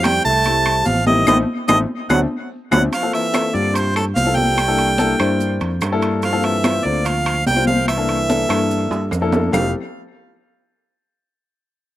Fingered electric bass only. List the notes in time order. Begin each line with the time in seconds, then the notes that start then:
Already playing: F2
0.25 C2
0.87 A1
1.28 A1
1.69 A1
2.10 D2
2.72 D2
3.54 G2
4.17 C2
5.20 G2
5.61 F2
5.82 G2
6.85 D2
7.47 C2
8.49 G2
8.91 G2
9.12 F2
9.53 F1